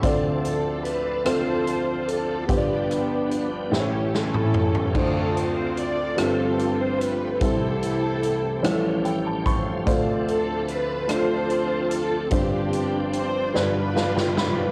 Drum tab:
CC |------------|------------|x-----------|------------|
HH |x-x-x-x-x-x-|x-x-x-------|--x-x-x-x-x-|x-x-x-x-x-x-|
SD |------r-----|--r---o-o---|------r-----|------r-----|
T2 |------------|---------o--|------------|------------|
FT |------------|----------oo|------------|------------|
BD |o-----------|o-----------|o-----------|o---------o-|

CC |------------|------------|
HH |x-x-x-x-x-x-|x-x-x-------|
SD |------r-----|------o-ooo-|
T2 |------------|------------|
FT |------------|------------|
BD |o-----------|o-----------|